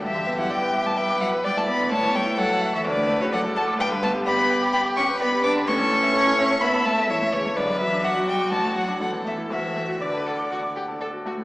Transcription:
<<
  \new Staff \with { instrumentName = "Violin" } { \time 4/4 \key d \major \tempo 4 = 127 e''8. fis''16 g''8. a''16 g''8 fis''8 g''16 a''16 b''8 | a''8 g''8 fis''8. e''16 d''8. cis''16 fis''8 a''8 | g''8 a''8 b''4 b''8 cis'''8 b''8 d'''8 | cis'''2 b''8 a''8 e''8 cis''8 |
d''8 e''8 fis''8 g''8 a''8 fis''8 fis''8 e''8 | e''4 d''2 r4 | }
  \new Staff \with { instrumentName = "Violin" } { \time 4/4 \key d \major g'2 b'4 d''4 | cis''4 a'4 b'4 a'4 | b'4 g'2 b'4 | a'4 cis''4 e''4 cis''4 |
b'4 fis'2 a'4 | fis'4 b'8 a'8 fis'8 g'8 a'8 fis'8 | }
  \new Staff \with { instrumentName = "Grand piano" } { \time 4/4 \key d \major g,16 d16 b16 e'16 d''16 b'16 e''16 d'''16 e''16 d'''16 e''16 b'16 d''16 e'16 b16 d16 | a,16 e16 a16 e'16 cis''16 a'16 e''16 cis'''16 d,16 a,16 a16 fis'16 d''16 a'16 fis''16 d'''16 | g,16 d16 b16 g'16 d''16 b'16 g''16 d'''16 g''16 d'''16 g''16 b'16 d''16 g'16 b16 d16 | a,16 e16 a16 e'16 a'16 e'16 e''16 a''16 e''16 a''16 e''16 a'16 e'16 a16 e16 a16 |
b,,16 fis,16 fis16 d'16 d''16 fis'16 d''16 d'''16 a,,16 a,16 fis16 d'16 a,,16 e,16 a16 e'16 | d,16 a,16 a16 fis'16 d''16 a'16 fis''16 d'''16 fis''16 d'''16 fis''16 a'16 d''16 fis'16 a16 a,16 | }
  \new Staff \with { instrumentName = "Cello" } { \clef bass \time 4/4 \key d \major e8. fis16 g8. a16 g8 fis8 g16 a16 b8 | a8 g8 fis8. e16 d8. cis16 fis8 a8 | g8 a8 b4 b8 cis'8 b8 d'8 | cis'2 b8 a8 e8 cis8 |
d8 e8 fis8 g8 a8 fis8 fis8 e8 | e4 d2 r4 | }
>>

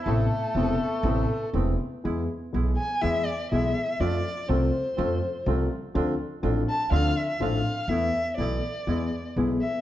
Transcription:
<<
  \new Staff \with { instrumentName = "Violin" } { \time 4/4 \key e \phrygian \tempo 4 = 123 a'2. r4 | r4. gis''8 e''8 d''8 e''4 | d''4 c''2 r4 | r4. a''8 f''8 e''8 f''4 |
e''4 d''2 r8 e''8 | }
  \new Staff \with { instrumentName = "Bandoneon" } { \time 4/4 \key e \phrygian <a b c'>8 r8 <a b c'>8 r8 <a b c'>8 r8 <a b c'>8 r8 | <gis b e'>8 r8 <gis b e'>8 r8 <gis b e'>8 r8 <gis b e'>8 r8 | <a c' f'>8 r8 <a c' f'>8 r8 <a c' f'>8 r8 <a c' f'>8 r8 | <c' d' f'>8 r8 <c' d' f'>8 r8 <c' d' f'>8 r8 <c' d' f'>8 r8 |
<a b e'>8 r8 <a b e'>8 r8 <gis b e'>8 r8 <gis b e'>8 r8 | }
  \new Staff \with { instrumentName = "Bandoneon" } { \time 4/4 \key e \phrygian a2. r4 | r1 | r1 | r1 |
r1 | }
  \new Staff \with { instrumentName = "Grand piano" } { \clef bass \time 4/4 \key e \phrygian <a,, a, c a b e'>8 r8 <e,, e, c a b e'>8 r8 <a,, a, c a b e'>8 r8 <e,, e, c a b e'>8 r8 | <e, e gis b gis'>8 r8 <b,, b, e gis b gis'>8 r8 <e, e gis b gis'>8 r8 <b,, b, e gis b gis'>8 r8 | <f, f a c' a'>8 r8 <c, c f a c' a'>8 r8 <f, f a c' a'>8 r8 <c, c f a c' a'>8 r8 | <d, d f c' d' a'>8 r8 <a,, a, f c' d' a'>8 r8 <d, d f c' d' a'>8 r8 <a,, a, f c' d' a'>8 r8 |
<e, e a b a'>8 r8 <b,, b, e a b a'>8 r8 <e, e gis b gis'>8 r8 <b,, b, e gis b gis'>8 r8 | }
  \new Staff \with { instrumentName = "Upright bass" } { \clef bass \time 4/4 \key e \phrygian a,,8 r8 e,,8 r8 a,,8 r8 e,,8 r8 | e,8 r8 b,,8 r8 e,8 r8 b,,8 r8 | f,8 r8 c,8 r8 f,8 r8 c,8 r8 | d,8 r8 a,,8 r8 d,8 r8 a,,8 r8 |
e,8 r8 b,,8 r8 e,8 r8 b,,8 r8 | }
>>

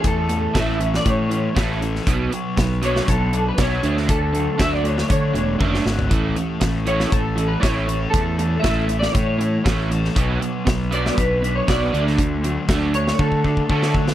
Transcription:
<<
  \new Staff \with { instrumentName = "Clean electric guitar" } { \time 4/4 \key a \major \tempo 4 = 119 a'4 e''8. d''16 cis''4. r8 | r4. cis''8 a'8. b'16 cis''8. r16 | a'4 e''16 d''16 cis''8 cis''4. r8 | r4. cis''8 a'8. b'16 cis''8. r16 |
a'4 e''8. d''16 cis''4. r8 | r4. d''8 b'8. cis''16 d''8. r16 | r4. cis''8 a'4 a'8. r16 | }
  \new Staff \with { instrumentName = "Overdriven electric guitar" } { \time 4/4 \key a \major <a, a cis' e' a'>8 a8 a8 cis'8 a8 cis'8 a'8 e'8 | b,8 fis8 b8 d'8 b8 d'8 cis''8 d8 | d8 fis8 a8 d'8 a8 d'8 cis''8 fis'8 | a8 e'8 a8 e'8 a8 e'8 cis''8 a'8 |
a8 e'8 a8 e'8 a8 e'8 cis''8 a'8 | b,8 fis8 b8 d'8 b8 d'8 cis''8 d8 | d8 fis8 a8 d'8 a8 d'8 cis''8 fis'8 | }
  \new Staff \with { instrumentName = "Overdriven electric guitar" } { \clef bass \time 4/4 \key a \major <a, e>8 <a, e>8 <a, e a>8 <a, e>8 <a, e>8 <a, e>8 <a, e a>8 <a, e>8 | <b, fis b>8 <b, fis>8 <b, fis>8 <b, fis b>8 <b, fis>8 <b, fis>8 <b, fis b>8 <d a d'>8 | <d a>8 <d a>8 <d a d'>8 <d a>8 <d a>8 <d a>8 <d a d'>8 <d a>8 | <a, e a>8 <a, e>8 <a, e>8 <a, e a>8 <a, e>8 <a, e>8 <a, e a>8 <a, e>8 |
<a, e>8 <a, e>8 <a, e a>8 <a, e>8 <a, e>8 <a, e>8 <a, e a>8 <a, e>8 | <b, fis b>8 <b, fis>8 <b, fis>8 <b, fis b>8 <b, fis>8 <b, fis>8 <b, fis b>8 <d a d'>8 | <d a>8 <d a>8 <d a d'>8 <d a>8 <d a>8 <d a>8 <d a d'>8 <d a>8 | }
  \new Staff \with { instrumentName = "Fingered electric bass" } { \clef bass \time 4/4 \key a \major e,4 a,,4 a,4 a,,4 | b,,8 r8 b,,4 b,,4 b,,8 d,8~ | d,4 d,4 d8 e,,8 fis,,8 gis,,8 | a,,8 r8 a,,4 a,,4 a,,4 |
e,4 a,,4 a,4 a,,4 | b,,8 r8 b,,4 b,,4 b,,8 d,8~ | d,4 d,4 d4 d4 | }
  \new DrumStaff \with { instrumentName = "Drums" } \drummode { \time 4/4 <hh bd>8 hh8 <hh bd sn>8 hh16 sn16 <hh bd>8 hh8 <hh bd sn>8 hh16 sn16 | <hh bd>8 hh8 <hh bd sn>8 hh16 sn16 <hh bd>8 hh8 <hh bd sn>8 hh16 sn16 | <hh bd>8 hh8 <hh bd sn>8 hh16 sn16 <hh bd>8 hh8 <bd tommh>16 sn16 sn16 tomfh16 | <hh bd>8 hh8 <hh bd sn>8 hh16 sn16 <hh bd>8 hh8 <hh bd sn>8 hh8 |
<hh bd>8 hh8 <hh bd sn>8 hh16 sn16 <hh bd>8 hh8 <hh bd sn>8 hh16 sn16 | <hh bd>8 hh8 <hh bd sn>8 hh16 sn16 <hh bd>8 hh8 <hh bd sn>8 hh16 sn16 | <hh bd>8 hh8 <hh bd sn>8 hh16 sn16 bd16 bd16 bd16 bd16 bd16 sn16 bd16 sn16 | }
>>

